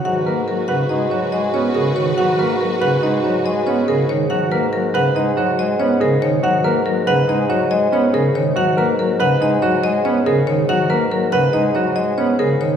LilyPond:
<<
  \new Staff \with { instrumentName = "Marimba" } { \time 5/4 \key gis \minor \tempo 4 = 141 fis''8 b'8 ais'8 fis''8 dis''8 cis''8 dis''8 cis''8 ais'8 cis''8 | fis''8 b'8 ais'8 fis''8 dis''8 cis''8 dis''8 cis''8 ais'8 cis''8 | fis''8 b'8 ais'8 fis''8 dis''8 cis''8 dis''8 cis''8 ais'8 cis''8 | fis''8 b'8 ais'8 fis''8 dis''8 cis''8 dis''8 cis''8 ais'8 cis''8 |
fis''8 b'8 ais'8 fis''8 dis''8 cis''8 dis''8 cis''8 ais'8 cis''8 | fis''8 b'8 ais'8 fis''8 dis''8 cis''8 dis''8 cis''8 ais'8 cis''8 | }
  \new Staff \with { instrumentName = "Violin section" } { \time 5/4 \key gis \minor <fis' b'>1~ <fis' b'>4~ | <fis' b'>1~ <fis' b'>8 r8 | r1 r4 | r1 r4 |
r1 r4 | r1 r4 | }
  \new Staff \with { instrumentName = "Alto flute" } { \time 5/4 \key gis \minor fis'1~ fis'4~ | fis'1~ fis'8 r8 | r1 r4 | r1 r4 |
r1 r4 | r1 r4 | }
  \new Staff \with { instrumentName = "Grand piano" } { \time 5/4 \key gis \minor fis'8 ais'8 r8 b'8 dis'8 fis'8 r8 cis'8 gis'8 r8 | fis'8 ais'8 r8 b'8 dis'8 fis'8 r8 cis'8 gis'8 r8 | fis'8 ais'8 r8 b'8 dis'8 fis'8 r8 cis'8 gis'8 r8 | fis'8 ais'8 r8 b'8 dis'8 fis'8 r8 cis'8 gis'8 r8 |
fis'8 ais'8 r8 b'8 dis'8 fis'8 r8 cis'8 gis'8 r8 | fis'8 ais'8 r8 b'8 dis'8 fis'8 r8 cis'8 gis'8 r8 | }
  \new Staff \with { instrumentName = "Pipe organ" } { \clef bass \time 5/4 \key gis \minor fis8 ais8 fis8 cis8 gis8 fis8 gis8 b8 cis8 dis8 | fis8 ais8 fis8 cis8 gis8 fis8 gis8 b8 cis8 dis8 | fis8 ais8 fis8 cis8 gis8 fis8 gis8 b8 cis8 dis8 | fis8 ais8 fis8 cis8 gis8 fis8 gis8 b8 cis8 dis8 |
fis8 ais8 fis8 cis8 gis8 fis8 gis8 b8 cis8 dis8 | fis8 ais8 fis8 cis8 gis8 fis8 gis8 b8 cis8 dis8 | }
  \new Staff \with { instrumentName = "Bassoon" } { \clef bass \time 5/4 \key gis \minor gis,1~ gis,4~ | gis,1~ gis,4~ | gis,1~ gis,4~ | gis,1~ gis,4~ |
gis,1~ gis,4~ | gis,1~ gis,4 | }
>>